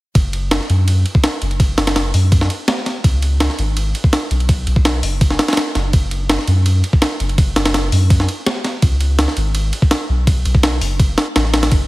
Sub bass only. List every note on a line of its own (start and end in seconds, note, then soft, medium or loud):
0.15 0.59 F#1 medium
0.70 1.04 F#2 loud
1.42 1.77 F#1 medium
1.78 2.13 F#1 medium
2.14 2.49 F#2 loud
3.04 3.48 C#2 loud
3.59 3.93 G#1 loud
4.31 4.66 B1 medium
4.67 5.02 B1 medium
5.03 5.38 F#1 loud
5.75 5.92 F#1 medium
5.94 6.38 F#1 loud
6.48 6.82 F#2 loud
7.20 7.55 F#1 medium
7.56 7.91 F#1 medium
7.92 8.27 F#2 loud
8.83 9.27 C#2 loud
9.37 9.72 G#1 loud
10.09 10.44 B1 medium
10.46 10.80 B1 medium
10.81 11.16 F#1 loud
11.36 11.71 A1 medium
11.72 11.87 F#1 loud